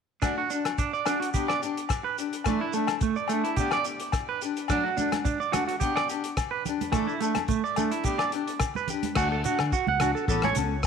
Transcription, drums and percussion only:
0.22 kick, cross-stick, closed hi-hat, low agogo, shekere
0.50 closed hi-hat, shekere
0.65 cross-stick, closed hi-hat, low agogo, shekere
0.78 kick, closed hi-hat, shekere
0.94 shekere
1.06 cross-stick, closed hi-hat, low agogo, shekere
1.22 closed hi-hat
1.34 kick, closed hi-hat, shekere
1.48 cross-stick, low agogo, shekere
1.63 closed hi-hat, shekere
1.77 closed hi-hat
1.89 kick, cross-stick, closed hi-hat, low agogo, shekere
2.18 closed hi-hat, shekere
2.33 closed hi-hat, shekere
2.44 kick, cross-stick, closed hi-hat, low agogo, shekere
2.73 closed hi-hat, shekere
2.87 cross-stick, closed hi-hat, low agogo, shekere
3.01 kick, closed hi-hat, shekere
3.16 shekere
3.28 closed hi-hat, low agogo, shekere
3.45 closed hi-hat
3.56 kick, closed hi-hat, shekere
3.71 cross-stick, low agogo, shekere
3.84 closed hi-hat, shekere
4.00 closed hi-hat
4.12 kick, cross-stick, closed hi-hat, low agogo, shekere
4.42 closed hi-hat, shekere
4.56 closed hi-hat, shekere
4.68 kick, cross-stick, closed hi-hat, low agogo, shekere
4.98 closed hi-hat, high conga, low conga, shekere
5.12 cross-stick, closed hi-hat, high conga, low agogo, shekere
5.25 kick, closed hi-hat, shekere
5.41 shekere
5.53 cross-stick, closed hi-hat, high conga, low conga, low agogo, shekere
5.69 closed hi-hat
5.81 kick, closed hi-hat, shekere
5.96 cross-stick, low agogo, shekere
6.09 closed hi-hat, shekere
6.24 closed hi-hat
6.37 kick, cross-stick, closed hi-hat, low agogo, shekere
6.65 closed hi-hat, low conga, shekere
6.81 closed hi-hat, high conga, shekere
6.92 kick, cross-stick, closed hi-hat, low agogo, shekere
7.09 shekere
7.21 closed hi-hat, shekere
7.35 cross-stick, closed hi-hat, high conga, low agogo
7.48 kick, closed hi-hat, shekere
7.65 shekere
7.76 closed hi-hat, low conga, low agogo, shekere
7.92 closed hi-hat
8.04 kick, closed hi-hat, shekere
8.19 cross-stick, low agogo, shekere
8.32 closed hi-hat
8.48 closed hi-hat
8.59 kick, cross-stick, closed hi-hat, low agogo, shekere
8.75 high conga, shekere
8.87 closed hi-hat, low conga, shekere
9.03 closed hi-hat, high conga
9.15 kick, cross-stick, crash, low agogo, shekere
9.44 closed hi-hat, shekere
9.59 cross-stick, low agogo
9.72 kick, shekere
9.88 high conga
10.00 cross-stick, closed hi-hat, low conga, low agogo, shekere
10.16 shekere
10.28 kick, shekere
10.42 cross-stick, high conga, low agogo
10.55 closed hi-hat, high conga, shekere
10.83 kick, cross-stick, shekere

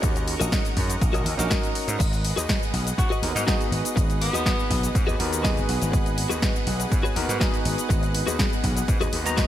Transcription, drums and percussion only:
0.03 kick, closed hi-hat, shaker
0.16 closed hi-hat, shaker
0.28 open hi-hat
0.41 closed hi-hat, shaker
0.52 kick, snare, closed hi-hat, shaker
0.65 closed hi-hat, shaker
0.77 kick, open hi-hat
0.90 closed hi-hat, shaker
1.01 kick, closed hi-hat, shaker
1.14 closed hi-hat, shaker
1.26 open hi-hat
1.39 snare, closed hi-hat, shaker
1.51 kick, snare, closed hi-hat, shaker
1.63 closed hi-hat, shaker
1.75 open hi-hat
1.88 closed hi-hat, shaker
2.00 kick, closed hi-hat, crash, shaker
2.13 closed hi-hat, shaker
2.25 open hi-hat
2.37 closed hi-hat, shaker
2.49 kick, snare, closed hi-hat, shaker
2.63 shaker
2.74 open hi-hat
2.87 closed hi-hat, shaker
2.98 kick, closed hi-hat, shaker
3.12 shaker
3.23 open hi-hat
3.36 snare, closed hi-hat, shaker
3.47 kick, snare, closed hi-hat, shaker
3.61 closed hi-hat, shaker
3.72 open hi-hat
3.85 closed hi-hat, shaker
3.97 kick, closed hi-hat, shaker
4.10 closed hi-hat, shaker
4.22 open hi-hat
4.34 closed hi-hat, shaker
4.46 kick, snare, closed hi-hat, shaker
4.60 shaker
4.70 kick, open hi-hat
4.83 closed hi-hat, shaker
4.95 kick, closed hi-hat, shaker
5.09 shaker
5.20 open hi-hat
5.33 closed hi-hat, shaker
5.44 kick, snare, closed hi-hat, shaker
5.57 closed hi-hat, shaker
5.69 open hi-hat
5.82 closed hi-hat, shaker
5.93 kick, closed hi-hat, shaker
6.06 closed hi-hat, shaker
6.18 open hi-hat
6.30 closed hi-hat, shaker
6.42 kick, snare, closed hi-hat, shaker
6.56 shaker
6.67 open hi-hat
6.80 closed hi-hat, shaker
6.92 kick, closed hi-hat, shaker
7.05 shaker
7.16 open hi-hat
7.29 snare, closed hi-hat, shaker
7.41 kick, snare, closed hi-hat, shaker
7.54 closed hi-hat, shaker
7.65 open hi-hat
7.78 closed hi-hat, shaker
7.90 kick, closed hi-hat, shaker
8.03 closed hi-hat, shaker
8.15 open hi-hat
8.27 closed hi-hat, shaker
8.39 kick, snare, closed hi-hat, shaker
8.53 shaker
8.64 kick, open hi-hat
8.77 closed hi-hat, shaker
8.88 kick, closed hi-hat, shaker
9.01 closed hi-hat, shaker
9.13 open hi-hat
9.26 snare, closed hi-hat, shaker
9.37 kick, snare, closed hi-hat, shaker

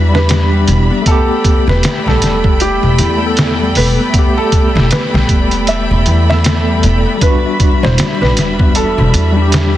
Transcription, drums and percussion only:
0.15 snare
0.29 snare, closed hi-hat
0.68 closed hi-hat
1.06 kick, closed hi-hat
1.44 kick, closed hi-hat
1.69 snare
1.83 snare, closed hi-hat
2.08 snare
2.22 snare, closed hi-hat
2.44 kick
2.60 closed hi-hat
2.98 closed hi-hat
3.37 snare, closed hi-hat
3.75 open hi-hat
4.14 kick, closed hi-hat
4.52 kick, closed hi-hat
4.77 snare
4.91 snare, closed hi-hat
5.15 snare
5.29 kick, closed hi-hat
5.51 closed hi-hat
5.67 closed hi-hat
6.06 closed hi-hat
6.30 snare
6.44 snare, closed hi-hat
6.83 closed hi-hat
7.21 kick, closed hi-hat
7.60 kick, closed hi-hat
7.84 snare
7.98 snare, closed hi-hat
8.23 snare
8.37 snare, closed hi-hat
8.59 kick
8.75 closed hi-hat
9.14 closed hi-hat
9.52 snare, closed hi-hat

